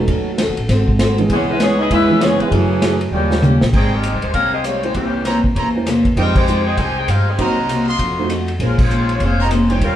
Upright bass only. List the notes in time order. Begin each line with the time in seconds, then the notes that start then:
0.07 D#2
0.48 C#2
0.58 A1
0.68 G#1
1.29 C#2
1.90 E2
2.39 muted upright bass stroke
2.51 F#2
3.11 D#2
3.61 A#1
3.73 G#1
4.13 C2
4.23 D#2
4.33 C2
4.94 C2
5.55 E2
6.16 F2
6.77 C2
7.08 G2
7.38 C2
7.99 F2
8.59 A#1
9.20 F1
9.81 D#2